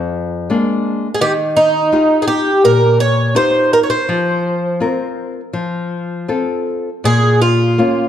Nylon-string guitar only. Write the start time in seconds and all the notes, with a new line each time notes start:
Already playing: F2
0.50 G#3 A#3 D4
1.21 D#3
1.92 D#4 F4 G4
2.64 A#2
3.35 D#4 F4 G4
4.09 F3
4.80 C4 F4 A#4
5.53 F3
6.28 C4 F4 A4
7.04 A#2
7.78 A#3 C#4 F4